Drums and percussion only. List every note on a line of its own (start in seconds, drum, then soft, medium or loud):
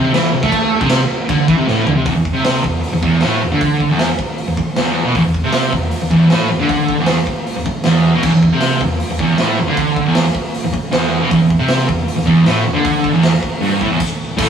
0.14 snare loud
0.14 crash medium
0.43 kick loud
0.52 kick loud
0.52 crash medium
0.81 kick loud
0.90 snare loud
0.90 crash medium
1.29 kick loud
1.29 crash medium
1.48 kick loud
1.67 snare medium
1.87 floor tom loud
2.05 kick loud
2.05 open hi-hat medium
2.25 kick medium
2.45 snare loud
2.45 open hi-hat medium
2.64 kick medium
2.83 open hi-hat medium
3.03 kick medium
3.21 snare medium
3.21 open hi-hat medium
3.61 kick loud
3.61 open hi-hat medium
3.80 kick medium
3.99 snare loud
3.99 open hi-hat medium
4.19 kick medium
4.38 open hi-hat medium
4.57 kick medium
4.76 snare loud
4.76 open hi-hat medium
5.15 kick loud
5.15 open hi-hat medium
5.34 kick medium
5.53 snare loud
5.53 open hi-hat medium
5.73 kick medium
5.91 open hi-hat medium
6.11 kick medium
6.30 snare loud
6.30 open hi-hat medium
6.69 kick loud
6.69 open hi-hat medium
6.89 kick medium
7.06 snare loud
7.06 open hi-hat medium
7.27 kick medium
7.46 open hi-hat medium
7.66 kick loud
7.84 snare loud
7.84 open hi-hat medium
8.23 kick loud
8.23 crash medium
8.43 kick medium
8.61 snare loud
8.61 open hi-hat medium
8.81 kick medium
9.00 open hi-hat medium
9.19 kick loud
9.38 snare loud
9.38 open hi-hat medium
9.77 kick loud
9.77 open hi-hat medium
9.96 kick medium
10.15 snare loud
10.15 open hi-hat medium
10.35 kick medium
10.54 open hi-hat medium
10.74 kick medium
10.93 snare loud
10.93 open hi-hat medium
11.31 kick loud
11.31 open hi-hat medium
11.50 kick medium
11.68 snare loud
11.68 open hi-hat medium
11.89 kick loud
12.08 open hi-hat medium
12.27 kick medium
12.46 snare medium
12.46 open hi-hat medium
12.84 kick loud
12.84 open hi-hat medium
13.04 kick medium
13.23 snare loud
13.23 open hi-hat medium
13.43 kick medium
13.63 open hi-hat medium
13.81 kick medium
14.00 kick loud
14.00 crash loud
14.38 kick loud
14.38 crash loud